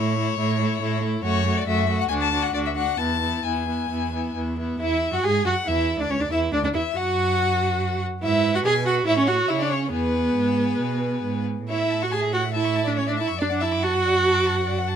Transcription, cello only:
0.00 0.35 A2 medium
0.39 0.77 A2 medium
0.82 1.20 A2 medium
1.24 1.62 F#2 medium
1.67 2.05 F#2 medium
2.10 2.49 D2 medium
2.54 2.94 D2 soft
2.99 3.40 E2 soft
3.45 3.85 E2 soft
3.90 4.30 E2 soft
4.35 4.75 E2 soft
4.80 5.10 E2 medium
5.12 5.17 F#2 soft
5.24 5.44 G#2 medium
5.45 5.53 F#2 medium
5.67 5.98 E2 medium
5.99 6.09 D2 soft
6.10 6.14 C#2 medium
6.20 6.30 D2 medium
6.31 6.52 E2 medium
6.53 6.57 D2 medium
6.64 6.68 D2 soft
6.74 6.82 E2 medium
6.95 8.00 F#2 medium
8.23 8.62 G#2 medium
8.65 9.06 B2 medium
9.07 9.49 A2 medium
9.50 9.92 C#3 medium
9.93 10.35 E2 medium
10.36 10.79 G#2 soft
10.81 11.24 B2 soft
11.24 11.68 G#2 soft
11.69 13.36 A2 medium
13.40 14.96 F#2 medium

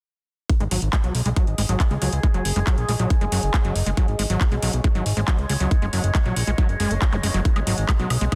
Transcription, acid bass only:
0.60 0.64 G#3 medium
0.71 0.81 F#3 medium
0.93 0.97 G#3 medium
1.04 1.13 F#3 medium
1.26 1.29 G#3 medium
1.36 1.46 F#3 medium
1.58 1.62 G#3 medium
1.69 1.79 F#3 medium
1.91 1.95 G#3 medium
2.02 2.11 F#3 medium
2.23 2.27 G#3 medium
2.34 2.44 F#3 medium
2.56 2.60 G#3 medium
2.67 2.76 F#3 medium
2.89 2.92 G#3 medium
2.99 3.09 F#3 medium
3.21 3.25 G#3 medium
3.32 3.42 F#3 medium
3.54 3.58 G#3 medium
3.65 3.74 F#3 medium
3.86 3.90 G#3 medium
3.97 4.07 F#3 medium
4.19 4.23 G#3 medium
4.30 4.40 F#3 medium
4.52 4.56 G#3 medium
4.62 4.72 F#3 medium
4.84 4.88 G#3 medium
4.95 5.05 F#3 medium
5.17 5.21 G#3 medium
5.28 5.37 F#3 medium
5.49 5.53 G#3 medium
5.60 5.70 F#3 medium
5.82 5.86 G#3 medium
5.93 6.03 F#3 medium
6.15 6.19 G#3 medium
6.26 6.35 F#3 medium
6.47 6.51 G#3 medium
6.58 6.68 F#3 medium
6.80 6.92 G#3 loud
6.91 6.95 A#3 medium
7.12 7.16 G#3 medium
7.23 7.27 G#3 medium
7.34 7.41 F#3 medium
7.56 7.60 G#3 medium
7.67 7.76 F#3 medium
7.89 7.92 G#3 medium
7.99 8.09 F#3 medium
8.21 8.25 G#3 medium
8.32 8.35 F#3 medium

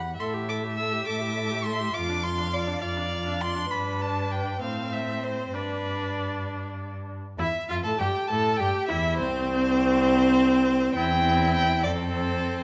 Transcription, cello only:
0.19 0.96 A2 medium
1.07 1.84 A2 medium
1.94 2.72 F2 medium
2.81 3.59 F2 medium
3.71 4.58 G2 medium
4.61 5.52 A2 medium
5.54 7.15 G2 medium
7.38 7.46 E2 medium
7.69 7.84 F2 medium
7.84 7.90 A2 medium
7.99 8.07 G2 medium
8.30 8.59 A2 medium
8.60 8.68 G2 medium
8.90 9.21 E2 medium
9.20 10.95 C2 medium
10.96 11.85 E2 medium
11.84 12.63 F2 medium

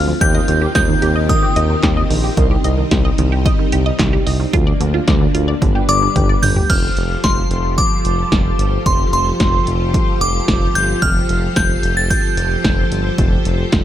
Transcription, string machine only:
0.00 0.19 A3 medium
0.00 4.50 C4 medium
0.00 2.33 F4 medium
0.21 2.35 D#3 medium
0.21 2.35 A#3 medium
0.21 2.35 G4 medium
2.37 4.52 G3 medium
2.37 4.51 D#4 medium
4.53 5.61 F3 medium
4.53 5.61 A#3 medium
4.53 6.68 D4 medium
5.62 6.69 G3 medium
5.62 6.69 B3 medium
6.70 13.84 F3 medium
6.70 13.84 F4 medium
6.70 13.84 G4 medium
6.70 13.84 A4 medium
6.70 13.84 C5 medium

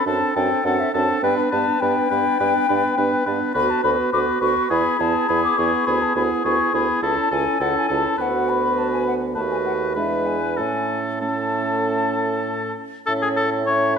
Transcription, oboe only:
0.06 0.35 A4 soft
0.36 0.65 A4 soft
0.66 0.93 A4 soft
0.94 1.23 A4 soft
1.24 1.51 B4 medium
1.52 1.81 B4 soft
1.82 2.10 B4 soft
2.11 2.40 B4 soft
2.40 2.68 B4 soft
2.69 2.97 B4 soft
2.97 3.25 B4 soft
3.26 3.54 B4 soft
3.54 3.83 B4 medium
3.84 4.12 B4 soft
4.13 4.41 B4 soft
4.41 4.69 B4 soft
4.70 4.99 G#4 soft
4.99 5.28 G#4 soft
5.28 5.57 G#4 soft
5.57 5.86 G#4 soft
5.87 6.15 G#4 soft
6.16 6.44 G#4 soft
6.45 6.73 G#4 soft
6.74 7.02 G#4 soft
7.03 7.31 A4 soft
7.31 7.59 A4 soft
7.60 7.88 A4 soft
7.88 8.17 A4 soft
8.18 9.17 B4 soft
9.34 9.95 B4 soft
9.95 10.59 B4 soft
10.57 11.21 A4 soft
11.21 12.74 A4 soft
13.06 13.13 A4 medium
13.22 13.29 G#4 medium
13.36 13.50 A4 medium
13.66 13.95 C#5 medium

